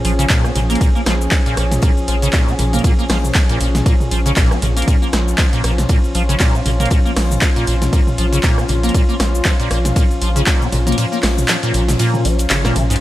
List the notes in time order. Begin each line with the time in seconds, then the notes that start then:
Already playing: F3 C#4 G#4
0.05 A#1 F3, closed hi-hat, open hi-hat
0.19 C#3, closed hi-hat, shaker
0.30 A#2, kick, snare, clap, closed hi-hat, ride, shaker
0.44 C#4, cross-stick, shaker
0.55 A#1 A#2, closed hi-hat, mid tom, open hi-hat
0.70 A#3, snare, open hi-hat, shaker
0.75 closed hi-hat
0.81 A#2, kick, closed hi-hat, ride, shaker
0.95 A#3, shaker
1.06 A#1 F3, cross-stick, snare, closed hi-hat, open hi-hat
1.21 shaker
1.31 kick, snare, clap, closed hi-hat, ride, shaker
1.46 A#2, closed hi-hat, shaker
1.57 A#1 A#2, cross-stick, closed hi-hat, open hi-hat
1.72 snare, closed hi-hat, mid tom, shaker
1.82 A#2, kick, closed hi-hat, ride, shaker
1.98 shaker
2.08 A#1 F3, closed hi-hat, open hi-hat
2.22 C#3, closed hi-hat, shaker
2.33 A#2, kick, snare, clap, closed hi-hat, ride, shaker
2.48 C#4, shaker
2.59 A#1 A#2, closed hi-hat, mid tom, open hi-hat
2.73 A#3, closed hi-hat, mid tom, shaker
2.79 closed hi-hat
2.84 A#2, kick, closed hi-hat, ride, shaker
2.99 A#3, shaker
3.09 A#1 F3, cross-stick, snare, open hi-hat
3.24 mid tom, shaker
3.34 kick, snare, clap, closed hi-hat, ride, shaker
3.49 A#2, closed hi-hat, shaker
3.60 A#1 A#2, closed hi-hat, open hi-hat
3.75 snare, closed hi-hat, mid tom, shaker
3.86 A#2, kick, closed hi-hat, ride, shaker
4.00 mid tom, shaker
4.11 A#1 F3, closed hi-hat, open hi-hat
4.26 C#3, closed hi-hat, shaker
4.36 A#1 A#2, kick, snare, clap, closed hi-hat, ride, shaker
4.51 C#4, cross-stick, shaker
4.62 A#1 A#2, closed hi-hat, mid tom, open hi-hat
4.76 A#3, snare, open hi-hat, shaker
4.82 closed hi-hat
4.88 A#2 F4, kick, closed hi-hat, ride, shaker
5.02 A#3, shaker
5.13 A#1, cross-stick, snare, closed hi-hat, open hi-hat
5.28 shaker
5.38 F3, kick, snare, clap, closed hi-hat, ride, shaker
5.53 A#2, closed hi-hat, shaker
5.64 A#1 A#2, cross-stick, closed hi-hat, open hi-hat
5.78 snare, closed hi-hat, mid tom, shaker
5.89 A#2, kick, closed hi-hat, ride, shaker
6.04 shaker
6.15 A#1 F3, closed hi-hat, open hi-hat
6.29 C#3, closed hi-hat, shaker
6.40 A#2, kick, snare, clap, closed hi-hat, ride, shaker
6.54 C#4, shaker
6.66 A#1 A#2, closed hi-hat, mid tom, open hi-hat
6.80 A#3, closed hi-hat, mid tom, shaker
6.86 closed hi-hat
6.91 A#2, kick, closed hi-hat, ride, shaker
7.05 A#3, shaker
7.16 A#1, cross-stick, snare, open hi-hat
7.31 mid tom, shaker
7.41 F3, kick, snare, clap, closed hi-hat, ride, shaker
7.56 A#2, closed hi-hat, shaker
7.67 A#1 A#2, closed hi-hat, open hi-hat
7.82 snare, closed hi-hat, mid tom, shaker
7.93 A#2, kick, closed hi-hat, ride, shaker
8.07 mid tom, shaker
8.18 A#1 F3, closed hi-hat, open hi-hat
8.33 C#3, closed hi-hat, shaker
8.43 A#2, kick, snare, clap, closed hi-hat, ride, shaker
8.58 C#4, cross-stick, shaker
8.69 A#1 A#2, closed hi-hat, mid tom, open hi-hat
8.83 A#3, snare, open hi-hat, shaker
8.89 closed hi-hat
8.94 A#2, kick, closed hi-hat, ride, shaker
9.09 A#3, shaker
9.20 A#1, cross-stick, snare, closed hi-hat, open hi-hat
9.35 shaker
9.45 F3, kick, snare, clap, closed hi-hat, ride, shaker
9.60 A#2, closed hi-hat, shaker
9.71 A#1 A#2, cross-stick, closed hi-hat, open hi-hat
9.85 snare, closed hi-hat, mid tom, shaker
9.96 A#2, kick, closed hi-hat, ride, shaker
10.11 shaker
10.21 A#1 F3, closed hi-hat, open hi-hat
10.36 C#3, closed hi-hat, shaker
10.46 A#2, kick, snare, clap, closed hi-hat, ride, shaker
10.61 C#4, shaker
10.72 A#1 A#2, closed hi-hat, mid tom, open hi-hat
10.87 A#3, closed hi-hat, mid tom, shaker
10.92 closed hi-hat
10.98 A#2, closed hi-hat, ride, shaker
11.12 A#3, shaker
11.23 A#1, cross-stick, snare, clap, open hi-hat
11.38 mid tom, shaker
11.48 F3, snare, clap, closed hi-hat, ride, shaker
11.63 A#2, closed hi-hat, shaker
11.74 A#1 A#2, closed hi-hat, open hi-hat
11.88 snare, closed hi-hat, mid tom, shaker
11.99 A#2, closed hi-hat, ride, shaker
12.14 mid tom, shaker
12.25 A#1 F3, closed hi-hat, open hi-hat
12.39 closed hi-hat, shaker
12.50 G#1 C#3, snare, clap, closed hi-hat, ride, shaker
12.65 A#2, cross-stick, snare, shaker
12.76 A#1 C#3, closed hi-hat, mid tom, open hi-hat
12.90 G#2, snare, open hi-hat, shaker
12.96 closed hi-hat